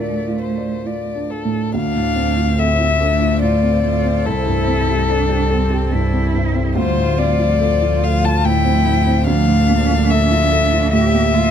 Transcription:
Already playing: felt piano D2 A2 D4 A#4 C5, cello A3
0.00 felt piano F4, violin D5
0.28 felt piano F4
0.42 violin C5
0.57 felt piano D5
0.85 felt piano F4, violin D5
1.15 felt piano D4
1.31 violin A4
1.45 felt piano A2
1.73 double bass D2, felt piano D2, ambient pad A3 A4 C5, cello D4, violin F5
1.96 felt piano A2
2.16 felt piano C4
2.37 felt piano F4
2.58 cello C4, felt piano A4, violin E5
2.79 felt piano F4
3.00 cello D4, felt piano A4
3.21 felt piano F4
3.42 felt piano A2, cello F4, violin D5
3.63 felt piano C4
3.84 felt piano A2, cello F4
4.05 felt piano C4
4.26 felt piano C2, double bass C2, ambient pad G3, cello E4, violin A4
4.46 felt piano G2
4.67 felt piano C4
4.87 felt piano G4
5.08 cello D4, felt piano A4
5.29 felt piano G4
5.50 cello C4, felt piano A4
5.70 felt piano G4
5.92 felt piano G2, cello E4
6.13 felt piano C4
6.34 felt piano G2
6.54 felt piano C4
6.76 felt piano D2, double bass D2, ambient pad F3 A4 C5, cello F4, violin C5
6.96 felt piano A2
7.18 felt piano C4, violin D5
7.39 felt piano F4
7.60 cello F4, felt piano A4
7.82 felt piano F4
8.03 felt piano A4, violin F5
8.24 felt piano F4, violin A5
8.44 felt piano A2, cello E4, violin G5
8.65 felt piano C4
8.86 felt piano A2
9.07 felt piano C4
9.27 felt piano D2, cello D4, ambient pad D5, violin F5
9.48 felt piano A2
9.69 felt piano A#3
9.90 felt piano F4
10.10 felt piano A4, violin E5
10.31 felt piano F4
10.52 felt piano A4
10.73 felt piano F4
10.92 felt piano A2, cello G4, violin E5
11.13 felt piano A#3
11.34 felt piano A2, cello F4

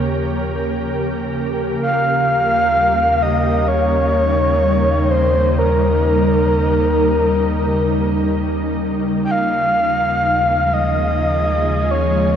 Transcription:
Already playing: sub bass D#2, ambient pad C#3 F3 A#3 G4 A#4, soft synth lead C#5
1.83 sub bass D#2, soft synth lead F5
2.05 ambient pad G3
3.22 soft synth lead D#5
3.44 ambient pad D#4
3.68 soft synth lead C#5
5.10 soft synth lead C5
5.58 soft synth lead A#4
9.25 soft synth lead G5
9.30 sub bass D#2, ambient pad C#3, soft synth lead F5
9.78 ambient pad F3
10.14 ambient pad G#3
10.46 ambient pad G#4
10.59 ambient pad F4
10.74 soft synth lead D#5
11.91 soft synth lead C#5

